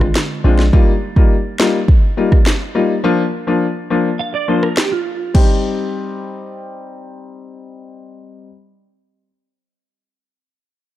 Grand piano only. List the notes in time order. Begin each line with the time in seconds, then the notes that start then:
0.44 G#3 C4 D4 F4
0.73 G3 A#3 D#4 F4
1.16 G3 A#3 D#4 F4
1.59 G3 A#3 D#4 F4
2.17 G3 A#3 D#4 F4
2.75 G3 A#3 D#4 F4
3.04 F3 A#3 D4 F4
3.47 F3 A#3 D4 F4
3.90 F3 A#3 D4 F4
4.48 F3 A#3 D4 F4
5.34 G3 C4 D#4 G4